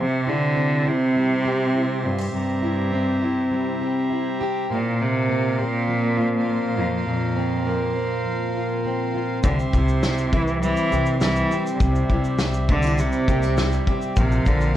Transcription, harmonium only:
Already playing: G4 C5 E5 C6
2.35 A#5
4.70 A#4 C5 F5 C6
9.44 G4 E5 C6
11.80 D5
14.17 A#4 C5 F5 C6

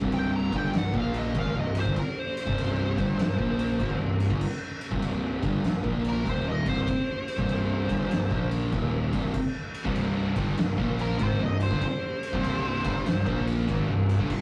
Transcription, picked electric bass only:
0.02 C1
0.52 G1
0.74 C1
0.94 A#1
1.35 G#1
1.56 C1
1.86 G1
2.47 C1
2.98 G1
3.20 C1
3.39 A#1
3.80 G#1
4.00 C1
4.31 G1
4.92 C1
5.43 G1
5.64 C1
5.84 A#1
6.26 D#1
6.66 C1
7.39 C1
7.89 G1
8.12 C1
8.31 A#1
8.72 D#1
9.13 C1
9.85 C1
10.36 G1
10.58 C1
10.78 A#1
11.19 G#1
11.40 C1
11.71 G1
12.34 C1
12.85 G1
13.06 C1
13.27 A#1
13.68 G#1
13.88 C1
14.19 G1

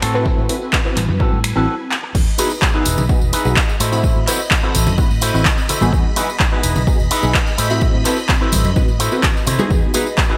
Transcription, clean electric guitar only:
0.02 C4 F#4 A4
1.20 C4 F#4 A4
1.56 C4 F#4 A4
1.91 muted clean electric guitar stroke
2.03 muted clean electric guitar stroke
2.38 D#4 E4 G#4 B4
2.62 muted clean electric guitar stroke
2.74 D#4 E4 G#4 B4
3.33 D#4 E4 G#4 B4
3.80 E4 F#4 A4 C5
4.27 E4 F#4 A4 C5
4.51 muted clean electric guitar stroke
4.63 E4 F#4 A4 C5
5.21 E4 F#4 A4 C5
5.69 E4 F#4 A4 C5
6.16 D#4 E4 G#4 B4
6.40 muted clean electric guitar stroke
6.52 D#4 E4 G#4 B4
7.11 D#4 E4 G#4 B4
7.58 E4 F#4 A4 C5
8.05 E4 F#4 A4 C5
8.41 E4 F#4 A4 C5
8.99 E4 F#4 A4 C5
9.46 E4 F#4 A4 C5
9.94 D#4 E4 G#4 B4
10.30 D#4 E4 G#4 B4

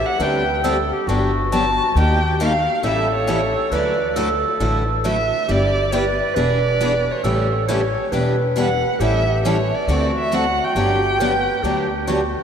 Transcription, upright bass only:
0.19 D2
1.07 G1
1.95 D#2
2.83 A1
3.71 D2
4.60 A1
5.48 G1
6.36 E1
7.24 A1
8.12 E1
9.00 A1
9.87 D2
10.75 G1
11.63 D2

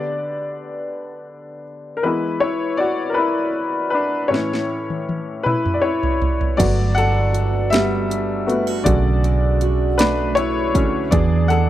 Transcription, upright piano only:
Already playing: D3 B3 D4 G4 D5
1.97 A#4
2.03 E3 G#3 B3 E4 B4
2.40 E4 C#5
2.77 F#4 D5
3.10 A#4
3.14 E4 B4
3.90 B4
3.94 D4
4.28 A2 E3 C#4 E4 C#5
5.43 E4 B4
5.74 D5
5.82 E4 C#5
6.57 F#3 A3 B3 F#4 D5
6.95 A4 F#5
7.70 G3 E5
8.46 A3 B3 F#4
8.84 C#3 D3 A3 F#4 D5
9.98 D4 B4
10.35 E4 C#5
10.74 D3 A3 C#4
11.11 F#3 B3 D4 G#4 D5
11.48 A4 F#5

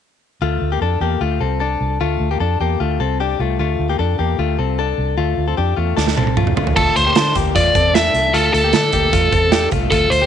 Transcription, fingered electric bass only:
0.41 D2
0.61 D2
0.81 F2
1.01 E2
1.20 D2
1.41 C2
1.81 C2
2.01 D2
2.20 D2
2.40 F2
2.60 E2
2.80 D2
3.00 C2
3.39 C2
3.59 D2
3.79 D2
3.99 F2
4.19 E2
4.38 D2
4.59 C2
4.98 C2
5.18 D2
5.37 D2
5.58 F2
5.77 E2
5.97 D2
6.17 C2
6.57 D2
6.77 D2
6.96 D2
7.16 D3
7.35 D2
7.56 E2
7.75 E2
8.14 C2
8.33 D2
8.54 D2
8.73 D3
8.93 D2
9.13 E2
9.32 E2
9.72 C2
9.92 D2
10.11 D2

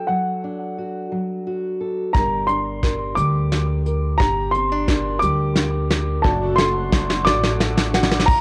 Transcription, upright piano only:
Already playing: G5
0.07 F#5
2.13 A#5
2.47 C6
3.15 D6
4.18 A#5
4.51 C6
5.19 D6
6.22 A5
6.56 C6
7.25 D6
8.26 A#5

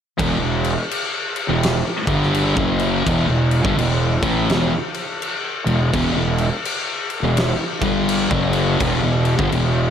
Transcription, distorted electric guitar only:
0.18 E2 B2
0.40 E2 B2
1.49 E2 B2
2.07 G2 D3 G3
2.57 F#2 C#3 F#3
3.06 E2 B2
3.28 E2 B2
3.65 G2 D3
3.78 E2 B2
4.22 A2 E3 A3
4.50 E2 B2
5.66 E2 B2
5.93 E2 B2
6.16 E2 B2
7.23 E2 B2
7.81 G2 D3 G3
8.30 F#2 C#3 F#3
8.80 E2 B2
9.03 E2 B2
9.38 G2 D3
9.52 E2 B2

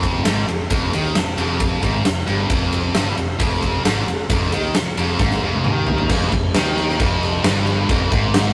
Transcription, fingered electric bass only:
Already playing: F1
0.25 G#1
0.48 F1
0.70 F1
0.93 D#2
1.16 F1
1.38 F1
1.82 G#1
2.05 F1
2.27 G1
2.50 F1
2.95 G1
3.18 F1
3.40 F1
3.84 G#1
4.08 F1
4.30 F1
4.52 D#2
4.74 F1
4.98 F1
5.19 G#1
5.43 F1
5.65 D#2
6.10 F1
6.32 F1
6.54 D#2
7.00 F1
7.44 G1
7.89 F1
8.12 G#1

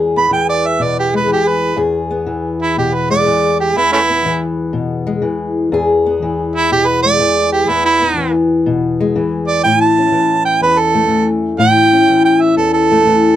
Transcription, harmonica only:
0.17 B5
0.33 G5
0.49 D5
0.67 E5
0.83 D5
0.99 G4
1.16 B4
1.32 G4
1.48 B4
2.62 E4
2.78 G4
2.94 B4
3.10 D5
3.60 G4
3.77 E4
3.93 A3 C#4 E4
6.55 E4
6.72 G4
6.87 B4
7.02 D5
7.52 G4
7.69 E4
7.85 E4
9.47 D5
9.63 G5
9.81 A5
10.45 G5
10.62 B4
10.79 A4
11.60 G5
12.25 G5
12.41 E5
12.57 A4
12.73 A4

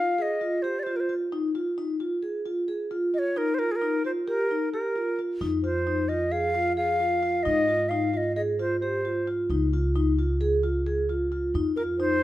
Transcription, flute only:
Already playing: F5
0.18 D#5 F5
0.62 C5
0.79 C5 D5
0.96 A#4 C5
3.14 D#5
3.19 C#5
3.37 A#4
3.54 C5
3.59 A#4
3.71 G#4
3.76 A#4
4.05 C5
4.27 A#4
4.72 A#4
5.64 C5
6.08 D#5
6.32 F5
6.76 F5
7.43 D#5
7.89 F5
8.14 D#5 F5
8.36 D#5
8.59 C5
8.80 C5
11.76 A#4
11.99 C5

